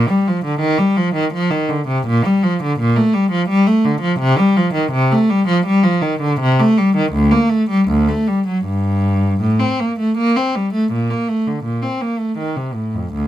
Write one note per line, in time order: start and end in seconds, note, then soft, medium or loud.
0.09 0.26 G3 medium
0.28 0.44 F3 medium
0.45 0.61 D3 medium
0.60 0.78 D#3 medium
0.78 0.96 G3 medium
0.97 1.14 F3 medium
1.15 1.32 D#3 medium
1.33 1.50 F3 medium
1.51 1.68 D#3 medium
1.69 1.87 D3 medium
1.88 2.05 C3 medium
2.07 2.24 A#2 medium
2.25 2.43 G3 medium
2.43 2.60 F3 medium
2.63 2.79 D3 medium
2.80 2.96 A#2 medium
2.96 3.14 A3 medium
3.14 3.31 G3 medium
3.31 3.48 F3 medium
3.49 3.66 G3 medium
3.67 3.84 A3 medium
3.85 4.02 D3 medium
4.01 4.19 F3 medium
4.19 4.37 C3 medium
4.38 4.56 G3 medium
4.56 4.74 F3 medium
4.74 4.91 D#3 medium
4.92 5.10 C3 medium
5.11 5.29 A3 medium
5.30 5.47 G3 medium
5.48 5.65 F3 medium
5.66 5.83 G3 medium
5.83 6.02 F3 medium
6.01 6.20 D#3 medium
6.21 6.39 D3 medium
6.40 6.58 C3 medium
6.60 6.78 A3 medium
6.78 6.96 G3 medium
6.97 7.14 D#3 medium
7.13 7.32 D2 medium
7.31 7.51 A#3 medium
7.50 7.69 A3 medium
7.70 7.88 G3 medium
7.88 8.07 D2 medium
8.08 8.27 A3 medium
8.28 8.46 G3 medium
8.47 8.65 F#3 medium
8.65 9.39 G2 medium
9.41 9.59 A2 medium
9.60 9.79 C4 medium
9.80 9.98 A#3 medium
9.99 10.17 A3 medium
10.18 10.35 A#3 medium
10.36 10.55 C4 medium
10.55 10.73 G3 medium
10.73 10.91 A3 medium
10.92 11.09 A#2 medium
11.10 11.28 A#3 soft
11.28 11.46 A3 soft
11.47 11.65 D3 soft
11.64 11.82 A#2 medium
11.82 12.00 C4 soft
12.02 12.19 A#3 soft
12.19 12.37 A3 soft
12.38 12.55 D#3 medium
12.57 12.75 C3 soft
12.74 12.93 A2 soft
12.95 13.13 F2 soft
13.13 13.28 D2 medium